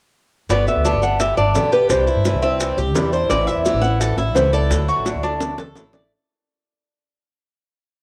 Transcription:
0.49 upright bass G1, steel-string acoustic guitar B2 D3 G3 B3 G4, cuban tres B3, nylon-string guitar D5, high bongo, maracas
0.68 nylon-string guitar E5, high bongo, maracas
0.76 upright bass D2
0.84 steel-string acoustic guitar B2 D3 G3 B3 G4, cuban tres D4, high bongo, maracas
0.93 upright bass G1
1.02 steel-string acoustic guitar G3 B3 G4, nylon-string guitar F#5, high bongo, maracas
1.20 steel-string acoustic guitar D3 G3 B3 G4, cuban tres G4, nylon-string guitar E5, high bongo, maracas
1.37 upright bass G1, cuban tres D4, nylon-string guitar D5, muted steel-string acoustic guitar stroke, high bongo, maracas
1.55 upright bass B1, steel-string acoustic guitar B2 D3 G3 B3 G4, high bongo, low bongo, maracas
1.72 steel-string acoustic guitar G3 B3 G4, cuban tres G4, nylon-string guitar B4, maracas
1.89 upright bass C2, steel-string acoustic guitar C3 E3 G3 D4 E4, nylon-string guitar C5, high bongo, maracas
2.07 cuban tres E4, high bongo, maracas
2.16 upright bass G2
2.24 steel-string acoustic guitar C3 E3 G3 D4 E4, high bongo, maracas
2.33 upright bass C2
2.42 steel-string acoustic guitar G3 D4 E4, cuban tres C4, nylon-string guitar E5, high bongo, maracas
2.60 steel-string acoustic guitar E3 G3 D4 E4, high bongo, maracas
2.77 upright bass C2, cuban tres G4, muted steel-string acoustic guitar stroke, high bongo, maracas
2.94 upright bass E2, steel-string acoustic guitar C3 E3 G3 D4 E4, high bongo, low bongo, maracas
3.12 steel-string acoustic guitar G3 D4 E4, cuban tres C5, maracas
3.30 upright bass A1, steel-string acoustic guitar E3 B3 C4 E4, nylon-string guitar D5, high bongo, maracas
3.47 nylon-string guitar E5, high bongo, maracas
3.56 upright bass E2
3.65 steel-string acoustic guitar E3 B3 C4 E4, cuban tres E4, high bongo, maracas
3.74 upright bass A1
3.81 steel-string acoustic guitar B3 C4 E4, nylon-string guitar F#5, high bongo, maracas
4.00 steel-string acoustic guitar E3 B3 C4 E4, cuban tres A4, high bongo, maracas
4.17 upright bass A1, cuban tres E4, nylon-string guitar E5, muted steel-string acoustic guitar stroke, high bongo, maracas
4.35 upright bass C#2, steel-string acoustic guitar E3 B3 C4 E4, nylon-string guitar C5, high bongo, low bongo, maracas
4.53 steel-string acoustic guitar B3 C4 E4, cuban tres A4, nylon-string guitar D5, maracas
4.70 upright bass D2, steel-string acoustic guitar D3 F#3 A3 D4 E4, high bongo, maracas
4.88 cuban tres F#4, high bongo, maracas
4.96 upright bass A1
5.05 steel-string acoustic guitar D3 F#3 A3 D4 E4, high bongo, maracas
5.14 upright bass D2
5.23 steel-string acoustic guitar A3 D4 E4, cuban tres D4, high bongo, maracas
5.40 steel-string acoustic guitar F#3 A3 D4 E4, low bongo, maracas
5.58 upright bass D2, cuban tres A4, muted steel-string acoustic guitar stroke, low bongo, maracas
5.75 upright bass A1, steel-string acoustic guitar D3 F#3 A3 D4 E4, low bongo, maracas
5.93 steel-string acoustic guitar A3 D4 E4, cuban tres D5, low bongo, maracas

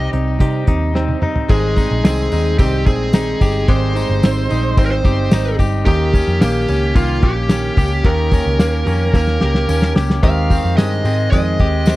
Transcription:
Already playing: steel-string acoustic guitar C3 G3 C4 D#4, clean electric guitar C3 D#4 G4
0.11 picked electric bass C2, steel-string acoustic guitar G3 C4 D#4, closed hi-hat
0.39 steel-string acoustic guitar C3 G3 C4 D#4, picked electric bass C3, clean electric guitar G4, kick, closed hi-hat
0.66 picked electric bass D#2, steel-string acoustic guitar G3 C4 D#4, kick, closed hi-hat
0.93 steel-string acoustic guitar C3 G3 C4 D#4, snare
1.08 high tom
1.21 steel-string acoustic guitar G3 C4 D#4, mid tom
1.36 floor tom
1.49 picked electric bass G#1, steel-string acoustic guitar G#2 D#3 G3 C4 D#4, clean electric guitar G#3, lead electric guitar G#4, kick, crash, tambourine
1.76 steel-string acoustic guitar G3 C4 D#4, kick, ride, tambourine
1.91 picked electric bass A#1
2.02 picked electric bass C2, steel-string acoustic guitar D#3 G3 C4 D#4, lead electric guitar G#4, snare, ride, tambourine
2.30 picked electric bass D#2, steel-string acoustic guitar G3 C4 D#4, ride, tambourine
2.58 picked electric bass C2, steel-string acoustic guitar G#2 D#3 G3 C4 D#4, lead electric guitar G4, kick, ride, tambourine
2.86 picked electric bass A#1, steel-string acoustic guitar G3 C4 D#4, lead electric guitar G#4, kick, ride, tambourine
3.13 steel-string acoustic guitar D#3 G3 C4 D#4, snare, ride, tambourine
3.40 picked electric bass G1, steel-string acoustic guitar G3 C4 D#4, clean electric guitar G4, kick, ride, tambourine
3.68 picked electric bass G#1, steel-string acoustic guitar G#2 D#3 G3 C4 D#4, clean electric guitar G#3 G4, lead electric guitar C5, kick, ride, tambourine
3.95 steel-string acoustic guitar G3 C4 D#4, ride, tambourine
4.09 picked electric bass G1
4.22 picked electric bass G#1, steel-string acoustic guitar D#3 G3 C4 D#4, snare, ride, tambourine
4.49 picked electric bass A#1, steel-string acoustic guitar G3 C4 D#4, ride, tambourine
4.77 picked electric bass G#1, steel-string acoustic guitar G#2 D#3 G3 C4 D#4, lead electric guitar C5, kick, ride, tambourine
4.86 lead electric guitar A#4
4.91 lead electric guitar C5
5.04 picked electric bass G1, steel-string acoustic guitar G3 C4 D#4, clean electric guitar G4, kick, ride, tambourine
5.31 picked electric bass G#1, steel-string acoustic guitar D#3 G3 C4 D#4, snare, ride, tambourine
5.59 picked electric bass G1, steel-string acoustic guitar G3 C4 D#4, clean electric guitar G4, kick, ride, tambourine
5.85 picked electric bass D#2, steel-string acoustic guitar D#3 A#3 C#4 G4, lead electric guitar G4, kick, ride, tambourine
6.13 steel-string acoustic guitar A#3 C#4 G4, kick, ride, tambourine
6.28 picked electric bass F2
6.40 picked electric bass A#1, steel-string acoustic guitar D#3 A#3 C#4 G4, lead electric guitar G4, snare, ride, tambourine
6.67 picked electric bass C#2, steel-string acoustic guitar A#3 C#4 G4, ride, tambourine
6.95 picked electric bass C2, steel-string acoustic guitar D#3 A#3 C#4 G4, lead electric guitar F4, kick, ride, tambourine
7.22 picked electric bass A#1, steel-string acoustic guitar A#3 C#4 G4, lead electric guitar G4, kick, ride
7.49 steel-string acoustic guitar D#3 A#3 C#4 G4, snare, ride, tambourine
7.76 picked electric bass C#2, steel-string acoustic guitar A#3 C#4 G4, kick, ride, tambourine
8.04 picked electric bass D#2, steel-string acoustic guitar D#3 A#3 C#4 G4, lead electric guitar A#4, kick, ride
8.31 steel-string acoustic guitar A#3 C#4 G4, kick, ride, tambourine
8.46 picked electric bass C#2
8.58 picked electric bass D#2, steel-string acoustic guitar D#3 A#3 C#4 G4, snare, ride, tambourine
8.85 picked electric bass F2, steel-string acoustic guitar A#3 C#4 G4, ride, tambourine
9.13 picked electric bass D#2, steel-string acoustic guitar D#3 A#3 C#4 G4, lead electric guitar A#4, kick, snare, tambourine
9.27 snare
9.39 picked electric bass C#2, steel-string acoustic guitar A#3 C#4 G4, snare
9.55 snare
9.67 picked electric bass D#2, steel-string acoustic guitar D#3 A#3 C#4 G4, tambourine
9.82 snare
9.95 picked electric bass C#2, steel-string acoustic guitar A#3 C#4 G4, snare, tambourine
10.10 snare
10.23 picked electric bass D#2, steel-string acoustic guitar D#3 G#3 C4 G4, lead electric guitar F5, kick, hi-hat pedal, ride, tambourine
10.50 steel-string acoustic guitar G#3 C4 G4, kick, ride, tambourine
10.64 picked electric bass F2
10.77 picked electric bass G2, steel-string acoustic guitar D#3 G#3 C4 G4, lead electric guitar D#5, snare, ride, tambourine
11.04 picked electric bass G#2, steel-string acoustic guitar G#3 C4 G4, ride, tambourine
11.31 picked electric bass F2, steel-string acoustic guitar D#3 G#3 C4 G4, lead electric guitar D#5, kick, ride, tambourine
11.59 picked electric bass D#2, steel-string acoustic guitar G#3 C4 G4, kick, ride
11.86 steel-string acoustic guitar D#3 G#3 C4, snare, ride, tambourine
11.90 steel-string acoustic guitar G4

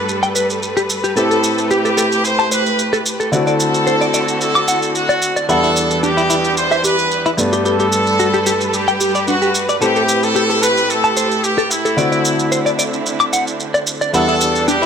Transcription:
Already playing: grand piano G2 A3 B3 D4, string section G3 A4 B4, trumpet section B4
0.09 shaker
0.23 clean electric guitar G5, shaker
0.35 clean electric guitar B4, shaker
0.50 shaker
0.63 shaker
0.77 clean electric guitar G4, shaker
0.90 shaker
1.04 clean electric guitar G4, shaker
1.16 grand piano A2 C4 E4 G4, string section A3 G4, trumpet section A4, clean electric guitar A4, shaker
1.31 clean electric guitar A4, shaker
1.44 shaker
1.58 shaker
1.71 trumpet section G4, clean electric guitar G4, shaker
1.85 clean electric guitar A4, shaker
1.98 clean electric guitar A4, shaker
2.12 shaker
2.25 trumpet section C5, shaker
2.39 clean electric guitar A5, shaker
2.52 trumpet section B4, clean electric guitar C5, shaker
2.66 shaker
2.79 shaker
2.93 clean electric guitar A4, shaker
3.06 shaker
3.20 clean electric guitar A4, shaker
3.32 grand piano D3 A3 C4 E4 F#4, string section D3 C4 E4 F#4, trumpet section A4, clean electric guitar D5, shaker
3.47 clean electric guitar D5, shaker
3.60 shaker
3.74 shaker
3.87 clean electric guitar C5, shaker
4.01 clean electric guitar D5, shaker
4.14 clean electric guitar D5, shaker
4.28 shaker
4.41 trumpet section A4, shaker
4.55 clean electric guitar D6, shaker
4.68 clean electric guitar F#5, shaker
4.82 shaker
4.95 trumpet section F#4, shaker
5.09 clean electric guitar D5, shaker
5.22 shaker
5.36 clean electric guitar D5, shaker
5.48 grand piano E2 G3 B3 D4 F#5, string section E3 G3 D4, clean electric guitar E4, trumpet section A4, shaker
5.63 clean electric guitar E4, shaker
5.76 shaker
5.91 shaker
6.03 clean electric guitar D4, trumpet section G4, shaker
6.17 clean electric guitar E4, shaker
6.30 clean electric guitar E4, shaker
6.44 shaker
6.57 trumpet section C5, shaker
6.71 clean electric guitar E5, shaker
6.84 clean electric guitar G4, trumpet section B4, shaker
6.99 shaker
7.11 shaker
7.26 clean electric guitar E4, shaker
7.37 grand piano G2 A3 B3 D4, string section G3 A4 B4, shaker
7.53 clean electric guitar G4, shaker
7.65 clean electric guitar G4, trumpet section A4, shaker
7.80 clean electric guitar G4, shaker
7.92 shaker
8.07 shaker
8.19 clean electric guitar F#4, shaker
8.34 clean electric guitar G4, shaker
8.46 clean electric guitar G4, shaker
8.61 shaker
8.67 trumpet section A4
8.74 trumpet section G4, shaker
8.88 clean electric guitar G5, shaker
9.01 clean electric guitar G4, shaker
9.15 clean electric guitar D5, shaker
9.28 clean electric guitar D4, trumpet section F#4, shaker
9.42 clean electric guitar G4, shaker
9.55 shaker
9.69 clean electric guitar D5, shaker
9.80 grand piano A2 C4 E4 G4, string section A3 G4, trumpet section G4, clean electric guitar A4, shaker
9.96 clean electric guitar A4, shaker
10.09 shaker
10.23 trumpet section A4, shaker
10.36 clean electric guitar G4, shaker
10.50 clean electric guitar A4, shaker
10.62 clean electric guitar A4, trumpet section B4, shaker
10.77 shaker
10.90 trumpet section A4, shaker
11.04 clean electric guitar A5, shaker
11.17 clean electric guitar C5, shaker
11.31 shaker
11.44 trumpet section G4, shaker
11.58 clean electric guitar A4, shaker
11.71 trumpet section E4, shaker
11.85 clean electric guitar A4, shaker
11.97 grand piano D3 A3 C4 E4 F#4, string section D3 C4 E4, clean electric guitar D5, shaker
12.12 clean electric guitar D5, shaker
12.25 shaker
12.39 shaker
12.52 clean electric guitar C5, shaker
12.66 clean electric guitar D5, shaker
12.79 clean electric guitar D5, shaker
12.93 shaker
13.06 shaker
13.20 clean electric guitar D6, shaker
13.33 clean electric guitar F#5, shaker
13.47 shaker
13.60 shaker
13.74 clean electric guitar D5, shaker
13.87 shaker
14.01 clean electric guitar D5, shaker
14.13 grand piano E2 G3 B3 D4 F#5, string section E3 G3 D4, clean electric guitar E4, trumpet section A4, shaker
14.28 clean electric guitar E4, shaker
14.41 shaker
14.55 shaker
14.68 clean electric guitar D4, trumpet section G4, shaker
14.82 clean electric guitar E4, shaker

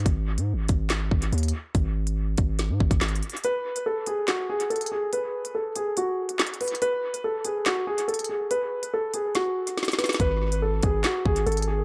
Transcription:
0.06 808-style bass G#1, kick, closed hi-hat
0.37 808-style bass G#2, closed hi-hat
0.53 808-style bass G#1
0.68 808-style bass G#1, kick, closed hi-hat
0.90 snare, clap, closed hi-hat
1.11 808-style bass G#1, kick
1.22 closed hi-hat
1.33 808-style bass D#2, closed hi-hat
1.38 closed hi-hat
1.43 closed hi-hat
1.48 closed hi-hat
1.75 808-style bass G#1, kick, closed hi-hat
2.07 closed hi-hat
2.38 808-style bass G#1, kick, closed hi-hat
2.59 snare, closed hi-hat
2.70 808-style bass G#2
2.80 808-style bass G#1, kick
2.91 808-style bass G#1, kick, closed hi-hat
3.01 808-style bass G#1, snare, clap, closed hi-hat
3.08 closed hi-hat
3.15 closed hi-hat
3.23 closed hi-hat
3.30 closed hi-hat
3.37 closed hi-hat
3.44 grand piano B4, closed hi-hat
3.76 closed hi-hat
3.86 grand piano A4
4.06 grand piano G#4, closed hi-hat
4.28 grand piano F#4, snare, clap, closed hi-hat
4.50 grand piano G#4
4.60 closed hi-hat
4.70 grand piano A4, closed hi-hat
4.76 closed hi-hat
4.81 closed hi-hat
4.86 closed hi-hat
4.92 grand piano G#4
5.13 grand piano B4, closed hi-hat
5.45 closed hi-hat
5.55 grand piano A4
5.76 grand piano G#4, closed hi-hat
5.97 grand piano F#4, closed hi-hat
6.29 closed hi-hat
6.40 snare, clap, closed hi-hat
6.47 closed hi-hat
6.54 closed hi-hat
6.61 grand piano B4, closed hi-hat, open hi-hat
6.68 closed hi-hat
6.75 closed hi-hat
6.82 grand piano B4, closed hi-hat
7.14 closed hi-hat
7.24 grand piano A4
7.45 grand piano G#4, closed hi-hat
7.66 grand piano F#4, snare, clap, closed hi-hat
7.87 grand piano G#4
7.98 closed hi-hat
8.08 grand piano A4, closed hi-hat
8.14 closed hi-hat
8.19 closed hi-hat
8.24 closed hi-hat
8.29 grand piano G#4
8.51 grand piano B4, closed hi-hat
8.83 closed hi-hat
8.94 grand piano A4
9.14 grand piano G#4, closed hi-hat
9.35 grand piano F#4, snare, closed hi-hat
9.67 closed hi-hat
9.78 snare, closed hi-hat
9.83 snare, closed hi-hat
9.88 snare, closed hi-hat
9.93 snare
9.99 grand piano B4, snare, closed hi-hat
10.04 snare, closed hi-hat
10.09 snare, closed hi-hat
10.14 snare
10.20 808-style bass G#1, grand piano B4, kick, closed hi-hat
10.52 closed hi-hat
10.62 grand piano A4
10.83 808-style bass G#1, grand piano G#4, kick, closed hi-hat
11.04 grand piano F#4, snare, clap, closed hi-hat
11.26 808-style bass G#1, grand piano G#4, kick
11.36 closed hi-hat
11.46 808-style bass G#1, grand piano A4, closed hi-hat
11.52 closed hi-hat
11.57 closed hi-hat
11.62 closed hi-hat
11.68 grand piano G#4

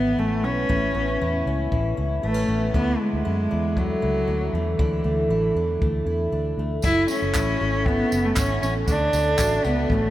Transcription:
Already playing: fingered electric bass G#1, twelve-string acoustic guitar A2 E3 B3 C#4 E4, cello B3
0.18 fingered electric bass A1, cello A3, twelve-string acoustic guitar C#4
0.43 fingered electric bass B1, twelve-string acoustic guitar B3, cello C#4
0.69 fingered electric bass A1, twelve-string acoustic guitar A2 E4, kick
0.95 fingered electric bass A1, twelve-string acoustic guitar B3
1.21 fingered electric bass E2, twelve-string acoustic guitar E4
1.46 fingered electric bass C#2, twelve-string acoustic guitar C#4
1.72 fingered electric bass A1, twelve-string acoustic guitar E3, kick
1.97 fingered electric bass C#2, twelve-string acoustic guitar E4
2.23 fingered electric bass A1, cello A3, twelve-string acoustic guitar B3
2.34 twelve-string acoustic guitar C#4
2.48 fingered electric bass A1, twelve-string acoustic guitar B3
2.73 fingered electric bass D2, twelve-string acoustic guitar D3 E4, cello B3, kick
3.00 cello G#3
3.13 fingered electric bass D2
3.25 fingered electric bass F#2, twelve-string acoustic guitar E4
3.51 fingered electric bass E2, twelve-string acoustic guitar D4
3.77 cello F#3, twelve-string acoustic guitar A3, kick
4.02 fingered electric bass C#2, twelve-string acoustic guitar E4
4.27 fingered electric bass D2, twelve-string acoustic guitar D4
4.53 fingered electric bass E2, cello E3, twelve-string acoustic guitar A3
4.79 fingered electric bass D2, twelve-string acoustic guitar D3 E4, kick
5.04 fingered electric bass D2, twelve-string acoustic guitar A3
5.29 fingered electric bass A1, twelve-string acoustic guitar E4
5.55 fingered electric bass E2, twelve-string acoustic guitar D4
5.82 fingered electric bass D2, twelve-string acoustic guitar A3, kick
6.06 fingered electric bass E2, twelve-string acoustic guitar E4
6.32 fingered electric bass D2, twelve-string acoustic guitar D4
6.58 fingered electric bass D2, twelve-string acoustic guitar A3
6.82 fingered electric bass F#1, twelve-string acoustic guitar F#3, cello E4, kick, crash, tambourine
7.08 twelve-string acoustic guitar A3, cello C#4, tambourine
7.22 fingered electric bass F#1
7.34 fingered electric bass A1, twelve-string acoustic guitar E4, kick, clap, tambourine
7.61 fingered electric bass G#1, twelve-string acoustic guitar A3
7.86 cello B3, twelve-string acoustic guitar C#4, kick
8.12 fingered electric bass F#1, twelve-string acoustic guitar E4, tambourine
8.25 cello A3
8.36 fingered electric bass G#1, cello C#4, twelve-string acoustic guitar C#4, kick, clap, tambourine
8.62 fingered electric bass A1, twelve-string acoustic guitar A3, cello C#4, tambourine
8.88 fingered electric bass D2, twelve-string acoustic guitar D3, cello D4, kick, tambourine
9.13 fingered electric bass D2, twelve-string acoustic guitar A3, tambourine
9.38 fingered electric bass A1, twelve-string acoustic guitar F#4, kick, clap, tambourine
9.64 fingered electric bass C#2, twelve-string acoustic guitar A3, cello B3, tambourine
9.90 fingered electric bass A1, cello A3, twelve-string acoustic guitar C#4, kick

